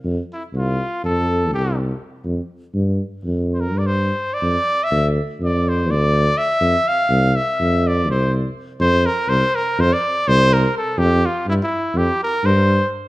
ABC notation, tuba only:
X:1
M:9/8
L:1/8
Q:3/8=83
K:F
V:1 name="Tuba" clef=bass
F,, z C,,2 F,,2 C,,3 | F,, z G,,2 F,,2 G,,3 | F,, z D,,2 F,,2 D,,3 | F,, z C,,2 F,,2 C,,3 |
F,,2 C,, z F,, z C,,3 | F,,2 G,, z F,, z G,,3 |]